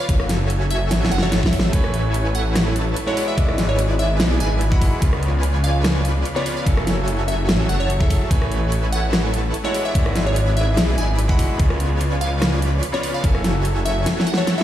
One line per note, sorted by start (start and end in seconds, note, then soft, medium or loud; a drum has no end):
0.00 0.13 F5 medium
0.09 0.93 F#1 loud
0.09 0.27 F#4 loud
0.09 0.27 A4 medium
0.09 0.27 C#5 medium
0.09 0.27 E5 loud
0.09 0.27 G#5 loud
0.09 kick loud
0.09 closed hi-hat medium
0.20 cross-stick medium
0.29 1.09 F#4 loud
0.29 1.09 A4 medium
0.29 1.09 C#5 medium
0.29 1.09 E5 medium
0.29 1.09 G#5 loud
0.29 snare medium
0.29 closed hi-hat medium
0.50 closed hi-hat medium
0.71 0.86 E5 medium
0.71 closed hi-hat medium
0.91 1.10 A1 medium
0.91 snare medium
0.91 closed hi-hat medium
1.05 snare medium
1.12 1.32 F#1 loud
1.12 1.20 F#5 loud
1.12 closed hi-hat medium
1.18 1.40 F#4 medium
1.18 1.40 A4 medium
1.18 1.40 C#5 medium
1.18 1.40 E5 medium
1.18 1.40 A5 medium
1.18 snare medium
1.22 1.37 C#5 medium
1.32 1.72 G#1 loud
1.32 snare medium
1.32 closed hi-hat medium
1.43 1.50 F#4 medium
1.43 1.50 A4 medium
1.43 1.50 C#5 medium
1.43 1.78 E5 medium
1.43 1.50 E5 medium
1.43 1.50 B5 loud
1.43 kick loud
1.43 snare loud
1.53 1.71 F#4 medium
1.53 1.71 A4 medium
1.53 1.71 C#5 medium
1.53 1.71 E5 medium
1.53 1.71 A5 medium
1.53 kick medium
1.53 open hi-hat medium
1.59 snare loud
1.71 2.95 A1 loud
1.71 2.73 A3 medium
1.71 1.91 E4 loud
1.71 1.91 A4 loud
1.71 1.91 B4 medium
1.71 2.74 B4 medium
1.71 1.91 C#5 medium
1.71 2.75 C#5 loud
1.71 2.73 G#5 medium
1.71 1.91 G#5 loud
1.71 kick loud
1.71 closed hi-hat medium
1.84 cross-stick medium
1.94 2.74 E4 medium
1.94 2.74 A4 medium
1.94 2.74 B4 medium
1.94 2.74 C#5 medium
1.94 2.74 G#5 loud
1.94 closed hi-hat medium
2.14 closed hi-hat medium
2.35 2.50 F#5 medium
2.35 closed hi-hat medium
2.56 cross-stick medium
2.56 snare loud
2.56 closed hi-hat medium
2.76 3.15 E4 medium
2.76 3.15 A4 medium
2.76 3.15 B4 medium
2.76 3.15 C#5 medium
2.76 3.15 A5 loud
2.76 closed hi-hat medium
2.96 closed hi-hat medium
3.07 3.34 G#3 loud
3.07 3.35 E4 medium
3.07 3.36 F#4 medium
3.07 3.21 C#5 medium
3.07 3.36 F#5 loud
3.17 3.35 E4 medium
3.17 3.35 G#4 medium
3.17 3.35 B4 medium
3.17 3.35 D5 medium
3.17 3.35 B5 medium
3.17 open hi-hat medium
3.28 3.43 E5 medium
3.36 4.21 G#1 loud
3.36 4.37 G#3 medium
3.36 4.38 E4 medium
3.36 3.56 E4 loud
3.36 4.38 F#4 medium
3.36 3.56 G#4 medium
3.36 3.56 B4 medium
3.36 3.56 D5 loud
3.36 3.56 G#5 loud
3.36 kick loud
3.36 closed hi-hat medium
3.40 4.39 D5 loud
3.48 cross-stick medium
3.58 4.38 E4 loud
3.58 4.38 G#4 medium
3.58 4.38 B4 medium
3.58 4.38 D5 medium
3.58 4.38 G#5 loud
3.58 snare medium
3.58 closed hi-hat medium
3.69 3.84 C#5 medium
3.79 closed hi-hat medium
3.99 4.15 E5 loud
3.99 closed hi-hat medium
4.20 4.39 B1 loud
4.20 snare loud
4.20 closed hi-hat medium
4.40 4.91 G#1 medium
4.40 4.79 E4 medium
4.40 4.79 G#4 medium
4.40 4.79 B4 medium
4.40 4.79 D5 medium
4.40 4.56 G#5 medium
4.40 4.79 B5 medium
4.40 closed hi-hat medium
4.61 closed hi-hat medium
4.71 4.99 G#3 loud
4.71 5.00 E4 medium
4.71 5.00 F#4 medium
4.71 5.00 F#5 loud
4.71 5.06 B5 medium
4.71 kick loud
4.81 5.00 E4 medium
4.81 5.00 G#4 medium
4.81 5.00 B4 medium
4.81 5.00 D5 medium
4.81 5.00 B5 medium
4.81 kick medium
4.81 open hi-hat medium
5.00 6.24 C#2 loud
5.00 6.01 C#3 medium
5.00 6.02 B3 medium
5.00 5.20 F4 loud
5.00 6.03 F4 medium
5.00 5.20 B4 medium
5.00 5.20 C#5 loud
5.00 5.20 D5 medium
5.00 5.20 G#5 loud
5.00 kick loud
5.00 closed hi-hat medium
5.13 cross-stick medium
5.22 6.02 F4 loud
5.22 6.02 B4 medium
5.22 6.02 C#5 medium
5.22 6.02 D5 medium
5.22 6.02 G#5 loud
5.22 closed hi-hat medium
5.43 closed hi-hat medium
5.64 5.79 F5 medium
5.64 closed hi-hat medium
5.84 cross-stick medium
5.84 snare loud
5.84 closed hi-hat medium
6.05 6.44 F4 medium
6.05 6.44 B4 medium
6.05 6.44 C#5 medium
6.05 6.44 D5 medium
6.05 6.44 B5 medium
6.05 closed hi-hat medium
6.25 closed hi-hat medium
6.35 6.63 C#3 loud
6.35 6.64 B3 medium
6.35 6.64 F4 medium
6.35 6.51 C#5 medium
6.35 6.64 D5 loud
6.46 6.64 F4 medium
6.46 6.64 B4 medium
6.46 6.64 C#5 medium
6.46 6.64 D5 medium
6.46 6.64 B5 medium
6.46 open hi-hat medium
6.57 6.71 F5 medium
6.64 7.50 F#1 loud
6.64 7.66 F#3 medium
6.64 7.66 E4 medium
6.64 6.85 F#4 loud
6.64 6.85 A4 medium
6.64 7.68 A4 medium
6.64 6.85 C#5 medium
6.64 6.85 E5 medium
6.64 6.85 G#5 loud
6.64 7.67 G#5 medium
6.64 kick loud
6.64 closed hi-hat medium
6.77 cross-stick medium
6.87 7.67 F#4 loud
6.87 7.67 A4 medium
6.87 7.67 C#5 medium
6.87 7.67 E5 medium
6.87 7.67 G#5 loud
6.87 snare medium
6.87 closed hi-hat medium
7.08 closed hi-hat medium
7.28 7.43 E5 medium
7.28 closed hi-hat medium
7.49 7.68 A1 medium
7.49 snare loud
7.49 closed hi-hat medium
7.69 8.20 F#1 medium
7.69 8.08 F#4 medium
7.69 8.08 A4 medium
7.69 8.08 C#5 medium
7.69 8.08 E5 medium
7.69 7.78 F#5 medium
7.69 8.08 A5 medium
7.69 closed hi-hat medium
7.80 7.95 C#5 medium
7.90 closed hi-hat medium
8.00 8.28 F#3 medium
8.00 8.28 E4 medium
8.00 8.29 G#4 medium
8.00 8.29 A4 loud
8.00 8.35 E5 medium
8.00 kick loud
8.10 8.29 F#4 medium
8.10 8.28 A4 medium
8.10 8.29 C#5 medium
8.10 8.28 E5 medium
8.10 8.29 A5 medium
8.10 kick medium
8.10 open hi-hat medium
8.29 9.53 A1 loud
8.29 9.30 A3 medium
8.29 8.49 E4 loud
8.29 8.49 A4 medium
8.29 8.49 B4 loud
8.29 9.32 B4 medium
8.29 8.49 C#5 medium
8.29 9.31 G#5 medium
8.29 8.49 G#5 loud
8.29 kick loud
8.29 closed hi-hat medium
8.33 9.32 C#5 loud
8.42 cross-stick medium
8.51 9.31 E4 loud
8.51 9.31 A4 medium
8.51 9.31 B4 medium
8.51 9.31 C#5 medium
8.51 9.31 G#5 loud
8.51 closed hi-hat medium
8.72 closed hi-hat medium
8.92 9.08 F#5 loud
8.92 closed hi-hat medium
9.13 cross-stick medium
9.13 snare loud
9.13 closed hi-hat medium
9.33 9.72 E4 medium
9.33 9.72 A4 medium
9.33 9.72 B4 medium
9.33 9.72 C#5 medium
9.33 9.72 A5 medium
9.33 closed hi-hat medium
9.54 closed hi-hat medium
9.64 9.91 G#3 medium
9.64 9.93 E4 medium
9.64 9.93 F#4 medium
9.64 9.79 C#5 medium
9.64 9.93 F#5 loud
9.74 9.93 E4 medium
9.74 9.93 G#4 medium
9.74 9.93 B4 medium
9.74 9.93 D5 medium
9.74 9.93 B5 medium
9.74 open hi-hat medium
9.85 10.00 E5 medium
9.93 10.79 G#1 loud
9.93 10.94 G#3 medium
9.93 10.95 E4 medium
9.93 10.13 E4 loud
9.93 10.96 F#4 medium
9.93 10.13 G#4 medium
9.93 10.13 B4 medium
9.93 10.13 D5 loud
9.93 10.13 G#5 loud
9.93 kick loud
9.93 closed hi-hat medium
9.97 10.96 D5 loud
10.06 cross-stick medium
10.16 10.96 E4 loud
10.16 10.96 G#4 medium
10.16 10.96 B4 medium
10.16 10.96 D5 medium
10.16 10.96 G#5 loud
10.16 snare medium
10.16 closed hi-hat medium
10.26 10.41 C#5 medium
10.36 closed hi-hat medium
10.57 10.72 E5 loud
10.57 closed hi-hat medium
10.77 10.96 B1 loud
10.77 snare loud
10.77 closed hi-hat medium
10.98 11.48 G#1 medium
10.98 11.37 E4 medium
10.98 11.37 G#4 medium
10.98 11.37 B4 medium
10.98 11.37 D5 medium
10.98 11.13 G#5 medium
10.98 11.37 B5 medium
10.98 closed hi-hat medium
11.19 closed hi-hat medium
11.28 11.57 G#3 loud
11.28 11.57 E4 medium
11.28 11.57 F#4 medium
11.28 11.58 F#5 loud
11.28 11.64 B5 medium
11.28 kick loud
11.39 11.57 E4 medium
11.39 11.57 G#4 medium
11.39 11.57 B4 medium
11.39 11.57 D5 medium
11.39 11.57 B5 medium
11.39 kick medium
11.39 open hi-hat loud
11.57 12.82 C#2 loud
11.57 12.59 C#3 medium
11.57 12.59 B3 medium
11.57 11.78 F4 loud
11.57 12.60 F4 medium
11.57 11.78 B4 loud
11.57 11.78 C#5 medium
11.57 11.78 D5 medium
11.57 11.78 G#5 loud
11.57 kick loud
11.57 closed hi-hat medium
11.70 cross-stick medium
11.80 12.60 F4 loud
11.80 12.60 B4 medium
11.80 12.60 C#5 medium
11.80 12.60 D5 medium
11.80 12.60 G#5 loud
11.80 closed hi-hat medium
12.01 closed hi-hat medium
12.21 12.37 F5 medium
12.21 closed hi-hat medium
12.42 cross-stick medium
12.42 snare loud
12.42 closed hi-hat medium
12.62 13.01 F4 medium
12.62 13.01 B4 medium
12.62 13.01 C#5 medium
12.62 13.01 D5 medium
12.62 13.01 B5 medium
12.62 closed hi-hat medium
12.83 closed hi-hat medium
12.92 13.21 C#3 loud
12.92 13.21 B3 medium
12.92 13.22 F4 medium
12.92 13.09 C#5 loud
12.92 13.22 D5 loud
13.03 13.22 F4 medium
13.03 13.22 B4 medium
13.03 13.22 C#5 medium
13.03 13.22 D5 medium
13.03 13.22 B5 medium
13.03 open hi-hat medium
13.14 13.28 F5 medium
13.22 14.06 F#1 loud
13.22 14.23 F#3 medium
13.22 14.24 E4 medium
13.22 13.42 F#4 loud
13.22 13.42 A4 medium
13.22 14.25 A4 loud
13.22 13.42 C#5 medium
13.22 13.42 E5 medium
13.22 13.42 G#5 loud
13.22 14.25 G#5 medium
13.22 kick loud
13.22 closed hi-hat medium
13.35 cross-stick medium
13.44 14.24 F#4 loud
13.44 14.24 A4 medium
13.44 14.24 C#5 medium
13.44 14.24 E5 medium
13.44 14.24 G#5 loud
13.44 snare medium
13.44 closed hi-hat medium
13.65 closed hi-hat medium
13.85 14.01 E5 loud
13.85 closed hi-hat medium
14.06 snare medium
14.06 closed hi-hat medium
14.20 snare medium
14.27 14.35 F#5 medium
14.27 closed hi-hat medium
14.34 14.55 F#4 medium
14.34 14.55 A4 medium
14.34 14.55 C#5 medium
14.34 14.52 C#5 medium
14.34 14.55 E5 medium
14.34 14.55 A5 loud
14.34 snare medium
14.47 snare medium
14.47 closed hi-hat medium
14.57 14.63 F#3 medium
14.57 14.63 E4 medium
14.57 14.63 F#4 medium
14.57 14.63 G#4 medium
14.57 14.63 A4 medium
14.57 14.63 C#5 medium
14.57 14.63 E5 medium
14.57 14.63 B5 loud